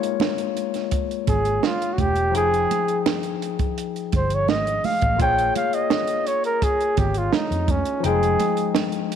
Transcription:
Already playing: tine electric piano G#3 A#3 F4 C#5, flugelhorn D#4
0.03 closed hi-hat
0.20 snare, high conga
0.38 closed hi-hat
0.57 closed hi-hat
0.74 snare, closed hi-hat
0.91 kick, closed hi-hat
1.11 closed hi-hat
1.27 fingered electric bass G#1, flugelhorn G#4, kick, closed hi-hat, muted conga, low conga
1.45 closed hi-hat
1.63 flugelhorn F4, snare, high conga
1.82 closed hi-hat
1.93 flugelhorn F#4
1.98 fingered electric bass E1, flugelhorn G4, kick, closed hi-hat, high conga
2.16 closed hi-hat
2.31 fingered electric bass F1, tine electric piano F3 D#4, closed hi-hat
2.35 flugelhorn G#4, tine electric piano G#4 G5
2.54 closed hi-hat
2.71 closed hi-hat, muted conga
2.88 closed hi-hat
3.06 snare, high conga
3.23 closed hi-hat
3.42 closed hi-hat
3.59 kick, closed hi-hat
3.78 closed hi-hat
3.96 closed hi-hat
4.12 fingered electric bass G1, kick, closed hi-hat, muted conga
4.17 flugelhorn C5
4.30 flugelhorn C#5, closed hi-hat
4.48 fingered electric bass G#1, flugelhorn D#5, snare, high conga
4.67 closed hi-hat
4.84 flugelhorn F5, open hi-hat, high conga
5.01 fingered electric bass A1, kick, closed hi-hat, high conga
5.16 fingered electric bass A#1, tine electric piano A#3 F4, kick, closed hi-hat
5.21 tine electric piano G#4 C#5, flugelhorn G5, muted conga
5.38 closed hi-hat
5.55 flugelhorn F5, closed hi-hat, muted conga
5.73 flugelhorn D#5, closed hi-hat
5.90 snare, high conga
6.07 closed hi-hat
6.27 flugelhorn C#5, closed hi-hat
6.44 flugelhorn A#4, closed hi-hat
6.62 flugelhorn G#4, kick, closed hi-hat
6.81 closed hi-hat
6.97 fingered electric bass G#1, flugelhorn G4, kick, closed hi-hat, muted conga, low conga
7.14 flugelhorn F4, closed hi-hat
7.32 flugelhorn D#4, muted fingered electric bass stroke, snare, high conga
7.51 fingered electric bass F2, closed hi-hat
7.68 flugelhorn C#4, kick, closed hi-hat, high conga
7.85 closed hi-hat
8.00 tine electric piano F3 D#4, closed hi-hat
8.04 fingered electric bass F1, tine electric piano G#3 G5, flugelhorn G#4, muted conga
8.23 closed hi-hat
8.40 closed hi-hat, muted conga
8.57 closed hi-hat
8.75 snare, high conga
8.92 closed hi-hat
9.12 closed hi-hat

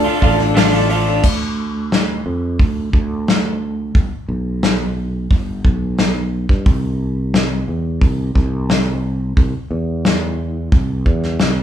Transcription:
Already playing: string section F4 A4 D5, upright piano A4 D5 F5
0.07 clean electric guitar A3, steel-string acoustic guitar D4 F4 A4
0.20 fretless electric bass A1, clean electric guitar D3 A3, steel-string acoustic guitar F3 D4 F4 A4, upright piano A4 D5 F5, kick, open hi-hat
0.38 steel-string acoustic guitar A4, muted clean electric guitar stroke, snare
0.42 steel-string acoustic guitar D4 F4
0.55 steel-string acoustic guitar D3 F3 D4 F4 A4, clean electric guitar A3, upright piano A4 D5 F5, snare, open hi-hat
0.73 clean electric guitar A3, steel-string acoustic guitar D4 F4 A4, snare
0.88 clean electric guitar D3 A3, steel-string acoustic guitar F3 D4 F4, open hi-hat
0.93 steel-string acoustic guitar A4
1.07 steel-string acoustic guitar D4 F4 A4
1.23 fretless electric bass D2, kick, crash
1.92 snare, open hi-hat
2.26 fretless electric bass F2
2.59 fretless electric bass D2, kick, open hi-hat
2.93 fretless electric bass D2, kick
3.28 snare, open hi-hat
3.95 fretless electric bass G1, kick, open hi-hat
4.28 fretless electric bass B1
4.63 snare, open hi-hat
5.31 fretless electric bass G1, kick, open hi-hat
5.64 fretless electric bass B1, kick
5.98 snare, open hi-hat
6.49 fretless electric bass G2, kick
6.66 fretless electric bass C2, kick, open hi-hat
7.34 snare, open hi-hat
7.68 fretless electric bass E2
8.01 fretless electric bass C2, kick, open hi-hat
8.35 fretless electric bass C2, kick
8.69 snare, open hi-hat
9.37 fretless electric bass C2, kick, open hi-hat
9.71 fretless electric bass E2
10.05 snare, open hi-hat
10.72 fretless electric bass C2, kick, open hi-hat
11.06 fretless electric bass E2, kick
11.23 snare
11.39 fretless electric bass C2, snare, open hi-hat

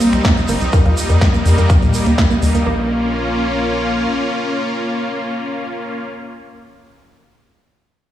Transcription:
Already playing: supersaw synth G3 C4 D#4
0.00 synth pluck A#3, open hi-hat, shaker
0.13 analog synth bass C2, finger snap, closed hi-hat, shaker
0.24 synth pluck A#3, kick, snare, closed hi-hat, shaker
0.37 closed hi-hat, shaker
0.48 analog synth bass G1, synth pluck A#3, open hi-hat, shaker
0.61 analog synth bass C2, closed hi-hat, shaker
0.73 supersaw synth G3 A#3, synth pluck A#4, kick, closed hi-hat, shaker
0.85 analog synth bass D#2, synth pluck F4, closed hi-hat
0.97 open hi-hat, shaker
1.10 analog synth bass F2, synth pluck A#4, closed hi-hat, shaker
1.21 kick, snare, closed hi-hat, shaker
1.34 synth pluck A#3, closed hi-hat, shaker
1.46 analog synth bass F2, open hi-hat, shaker
1.58 analog synth bass F2, synth pluck A#3, closed hi-hat, shaker
1.70 kick, closed hi-hat, shaker
1.82 analog synth bass D#2, synth pluck A#2, closed hi-hat, shaker
1.94 open hi-hat, shaker
2.06 analog synth bass D#2, synth pluck A#3, closed hi-hat, shaker
2.18 synth pluck A#3, kick, snare, closed hi-hat, shaker
2.30 synth pluck A#3, closed hi-hat, shaker
2.42 analog synth bass D#2, open hi-hat, shaker
2.54 analog synth bass D#2, synth pluck A#3, closed hi-hat, shaker
2.66 analog synth bass A#1, synth pluck A#3, supersaw synth A#3 C#4 F4

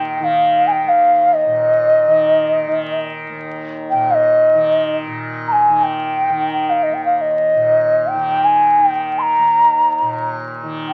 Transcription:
Already playing: tanpura D#2 A#2 D#3, bansuri G5
0.17 tanpura D#3, bansuri G5
0.24 bansuri F5
0.67 bansuri G#5
0.72 bansuri G5
0.84 tanpura D#2
0.89 bansuri F5
1.34 bansuri D#5
1.45 tanpura A#2
2.07 tanpura D#3
2.67 tanpura D#3
3.29 tanpura D#2
3.90 tanpura A#2, bansuri G5
4.11 bansuri D#5 F5
4.55 tanpura D#3
5.06 tanpura A#2
5.48 bansuri A#5
5.52 bansuri G#5
5.68 tanpura D#3
5.83 bansuri G5
6.30 tanpura D#3
6.53 bansuri G5
6.70 bansuri F5
6.83 bansuri D#5
6.90 tanpura D#2
6.94 bansuri G5
7.05 bansuri F5
7.18 bansuri D#5 F5
7.54 tanpura A#2
8.07 bansuri G5
8.14 tanpura D#3
8.45 bansuri G#5
8.77 tanpura D#3
8.86 bansuri G5
9.19 bansuri A#5 C6
9.38 tanpura D#2
10.00 tanpura A#2
10.63 tanpura D#3
10.89 bansuri G5

